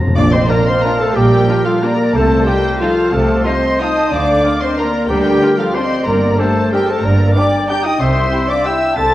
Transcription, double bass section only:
0, 0, Header, 1, 2, 480
1, 0, Start_track
1, 0, Key_signature, -2, "major"
1, 0, Tempo, 330579
1, 237, Time_signature, 3, 2, 24, 8
1, 5522, Tempo, 322581
1, 13468, End_track
2, 0, Start_track
2, 0, Title_t, "Double bass section"
2, 0, Program_c, 0, 48
2, 240, Note_on_c, 0, 34, 91
2, 639, Note_off_c, 0, 34, 0
2, 1683, Note_on_c, 0, 34, 78
2, 2072, Note_off_c, 0, 34, 0
2, 3114, Note_on_c, 0, 36, 90
2, 3500, Note_off_c, 0, 36, 0
2, 4553, Note_on_c, 0, 36, 86
2, 4940, Note_off_c, 0, 36, 0
2, 6003, Note_on_c, 0, 38, 88
2, 6395, Note_off_c, 0, 38, 0
2, 7444, Note_on_c, 0, 38, 92
2, 7836, Note_off_c, 0, 38, 0
2, 8892, Note_on_c, 0, 31, 90
2, 9287, Note_off_c, 0, 31, 0
2, 10346, Note_on_c, 0, 31, 80
2, 10737, Note_off_c, 0, 31, 0
2, 11778, Note_on_c, 0, 36, 87
2, 12165, Note_off_c, 0, 36, 0
2, 13218, Note_on_c, 0, 36, 80
2, 13468, Note_off_c, 0, 36, 0
2, 13468, End_track
0, 0, End_of_file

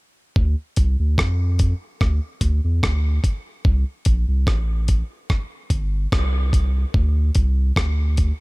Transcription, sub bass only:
0, 0, Header, 1, 2, 480
1, 0, Start_track
1, 0, Key_signature, -1, "minor"
1, 0, Tempo, 823045
1, 210, Time_signature, 4, 2, 24, 8
1, 4901, End_track
2, 0, Start_track
2, 0, Title_t, "Sub bass"
2, 0, Program_c, 0, 38
2, 212, Note_on_c, 0, 38, 102
2, 323, Note_off_c, 0, 38, 0
2, 452, Note_on_c, 0, 36, 98
2, 563, Note_off_c, 0, 36, 0
2, 580, Note_on_c, 0, 38, 88
2, 679, Note_off_c, 0, 38, 0
2, 690, Note_on_c, 0, 41, 88
2, 1014, Note_off_c, 0, 41, 0
2, 1174, Note_on_c, 0, 38, 89
2, 1283, Note_off_c, 0, 38, 0
2, 1407, Note_on_c, 0, 38, 96
2, 1520, Note_off_c, 0, 38, 0
2, 1541, Note_on_c, 0, 40, 82
2, 1639, Note_off_c, 0, 40, 0
2, 1652, Note_on_c, 0, 38, 93
2, 1863, Note_off_c, 0, 38, 0
2, 2131, Note_on_c, 0, 36, 103
2, 2241, Note_off_c, 0, 36, 0
2, 2370, Note_on_c, 0, 34, 97
2, 2481, Note_off_c, 0, 34, 0
2, 2497, Note_on_c, 0, 36, 96
2, 2597, Note_off_c, 0, 36, 0
2, 2608, Note_on_c, 0, 33, 86
2, 2932, Note_off_c, 0, 33, 0
2, 3328, Note_on_c, 0, 31, 90
2, 3540, Note_off_c, 0, 31, 0
2, 3572, Note_on_c, 0, 36, 78
2, 3996, Note_off_c, 0, 36, 0
2, 4051, Note_on_c, 0, 38, 103
2, 4262, Note_off_c, 0, 38, 0
2, 4291, Note_on_c, 0, 36, 101
2, 4503, Note_off_c, 0, 36, 0
2, 4530, Note_on_c, 0, 38, 93
2, 4854, Note_off_c, 0, 38, 0
2, 4901, End_track
0, 0, End_of_file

